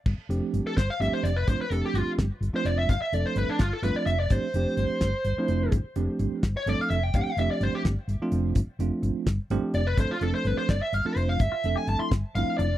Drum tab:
CC |x-----|------|------|------|
HH |-xxxxx|xxxxxx|xxxxxx|xxxxxx|
SD |---o--|---o--|---o--|---o--|
BD |o--o--|o--o--|o--o--|o--o--|

CC |------|------|------|------|
HH |xxxxxx|xxxxxx|xxxxxx|xxxxxx|
SD |---o--|---o--|---o--|---o--|
BD |o--o--|o--o--|o--o--|o--o--|

CC |------|
HH |xxxxxx|
SD |---o--|
BD |o--o--|